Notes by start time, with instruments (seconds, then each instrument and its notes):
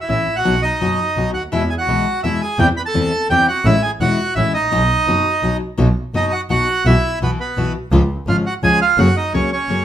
0.01 bandoneon E4 E5
0.09 double bass A1, nylon-string guitar E3 B3 C#4 E4, bandoneon E4 E5
0.27 double bass A1
0.36 bandoneon F#4 F#5
0.45 double bass B1, nylon-string guitar B2 F#3 B3 D#4 F#4
0.62 bandoneon D#4 D#5
0.81 double bass F#1, nylon-string guitar B2 F#3 B3 D#4 F#4
1.16 double bass B1, nylon-string guitar B2 F#3 B3 D#4 F#4
1.34 double bass D2, bandoneon F#4 F#5
1.52 double bass E2, nylon-string guitar B2 E3 G#3 B3 E4, bandoneon E4 E5
1.70 bandoneon G#4 G#5
1.78 bandoneon F#4 F#5
1.88 double bass B1, nylon-string guitar B2 E3 G#3 B3 E4
2.23 double bass E2, nylon-string guitar B2 E3 G#3 B3 E4, bandoneon E4 E5
2.41 bandoneon G#4 G#5
2.59 double bass E2, nylon-string guitar C3 E3 G3 C4 E4, bandoneon G4 G5
2.77 bandoneon B4 B5
2.86 bandoneon A4 A5
2.94 double bass E2, nylon-string guitar C3 E3 G3 C4 E4
3.30 double bass E2, nylon-string guitar C3 E3 G3 C4 E4, bandoneon G4 G5
3.48 bandoneon F#4 F#5
3.65 double bass A1, nylon-string guitar E3 G#3 C#4 E4, bandoneon E4 E5
3.82 bandoneon G#4 G#5
4.00 double bass E1, nylon-string guitar E3 G#3 C#4 E4, bandoneon F#4 F#5
4.35 double bass A1, nylon-string guitar E3 G#3 C#4 E4, bandoneon E4 E5
4.54 double bass A1, bandoneon D#4 D#5
4.72 double bass B1, nylon-string guitar B2 F#3 B3 D#4 F#4
5.07 double bass F#1, nylon-string guitar B2 F#3 B3 D#4 F#4
5.43 double bass B1, nylon-string guitar B2 F#3 B3 D#4 F#4
5.77 double bass B1, nylon-string guitar B2 F#3 B3 D#4 F#4
6.14 double bass F#1, nylon-string guitar B2 F#3 B3 D#4 F#4, bandoneon D#4 D#5
6.32 bandoneon F#4 F#5
6.49 double bass B1, nylon-string guitar B2 F#3 B3 D#4 F#4, bandoneon F#4 F#5
6.85 double bass B1, nylon-string guitar B2 E3 B3 E4 F#4, bandoneon E4 E5
7.21 double bass B1, nylon-string guitar B2 E3 B3 E4 F#4, bandoneon B3 B4
7.40 bandoneon B3 B4
7.56 double bass B1, nylon-string guitar B2 E3 B3 E4 F#4
7.92 double bass C#2, nylon-string guitar C#3 F3 G#3 C#4 F4
8.27 double bass G#1, nylon-string guitar C#3 F3 G#3 C#4 F4, bandoneon F4 F5
8.46 bandoneon F#4 F#5
8.63 double bass C#2, nylon-string guitar C#3 F3 G#3 C#4 F4, bandoneon G#4 G#5
8.81 bandoneon F4 F5
8.98 double bass F#1, nylon-string guitar F#3 A#3 C#4 G#4, bandoneon F#4 F#5
9.17 bandoneon D#4 D#5
9.34 double bass C#2, nylon-string guitar F#3 A#3 C#4 G#4, bandoneon C#4 C#5
9.53 bandoneon C#4 C#5
9.69 double bass F#1, nylon-string guitar F#3 A#3 C#4 G#4